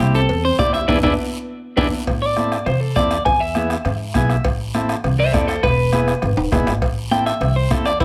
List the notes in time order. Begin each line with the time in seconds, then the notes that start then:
Already playing: G3 G4
0.00 C2 C4 E4 G4, bombo rim, high conga, short guiro
0.15 C4 A4, short guiro
0.29 E2, cowbell, long guiro
0.45 C4 C5
0.59 D2 C4 E4 G4 D5, bombo low, bombo rim, high conga, short guiro
0.73 E4 E5, bombo rim, short guiro
0.88 E2 B3 D4 E4 G#4 B4 D5 E5, bombo low, high conga, high timbale, long guiro
1.03 E2 B3 D4 E4 G#4 B4 D5 E5, bombo low, high conga, high timbale, long guiro
1.77 E2 B3 D4 E4 G#4 B4 D5 E5, bombo low, high conga, high timbale, long guiro
2.07 A2, bombo low, bombo rim, cowbell, high conga
2.22 D5
2.36 C4 E4 A4, bombo rim, high conga, short guiro
2.52 bombo rim, short guiro
2.66 C3 C5, bombo rim, cowbell, high conga, low conga, long guiro
2.81 A4
2.96 E2 C4 E4 A4 D5, bombo low, bombo rim, high conga, short guiro
3.11 bombo rim, short guiro
3.25 E2 G#5, bombo low, bombo rim, cowbell, high conga, low conga, long guiro
3.40 E5
3.55 B3 E4 G#4, bombo rim, high conga, short guiro
3.70 bombo rim, short guiro
3.85 G#2, bombo rim, cowbell, high conga, low conga, long guiro
4.14 B1 B3 E4 G#4 G#5, bombo low, bombo rim, high conga, short guiro
4.29 E5, bombo rim, short guiro
4.44 A1, bombo low, bombo rim, cowbell, long guiro
4.74 C4 E4 A4, bombo rim, high conga, short guiro
4.89 bombo rim, short guiro
5.04 C2, bombo rim, cowbell, high conga, low conga, long guiro
5.19 C5 E5
5.33 E2 C4 E4 A4 D5, bombo low, bombo rim, high conga, short guiro
5.47 A4 C5, bombo rim, short guiro
5.63 E1 B4, bombo low, bombo rim, cowbell, high conga, long guiro
5.93 B3 E4 G#4, bombo rim, high conga, short guiro
6.08 bombo rim, short guiro
6.22 G#1, bombo rim, cowbell, high conga, low conga, long guiro
6.37 D1, high timbale
6.52 E1 B3 E4 G#4, bombo low, bombo rim, high conga, low timbale, short guiro
6.67 G#1, bombo rim, low timbale, short guiro
6.82 A1, bombo low, bombo rim, cowbell, long guiro
7.11 C4 E4 A4 G5, bombo rim, high conga, short guiro
7.26 E5, bombo rim, short guiro
7.41 C2, bombo rim, cowbell, high conga, low conga, long guiro
7.56 C5
7.71 C4 E4 A4, bombo low, bombo rim, high conga, short guiro
7.85 D5, bombo rim, short guiro
8.00 E1 E4, bombo low, bombo rim, cowbell, high conga, low conga, long guiro